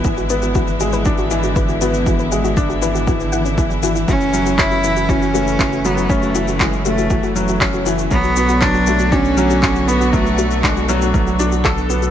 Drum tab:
SH |xxxxxxxxxxxxxxxx|xxxxxxxxxxxxxxxx|xxxxxxxxxxxxxxxx|xxxxxxxxxxxxxxxx|
CP |----------------|----------------|----x-------x---|----x-------x---|
BD |o---o---o---o---|o---o---o---o---|o---o---o---o---|o---o---o---o---|

SH |xxxxxxxxxxxxxxxx|xxxxxxxxxxxxxxxx|
CP |----x-------x---|----x-------x---|
BD |o---o---o---o---|o---o---o---o---|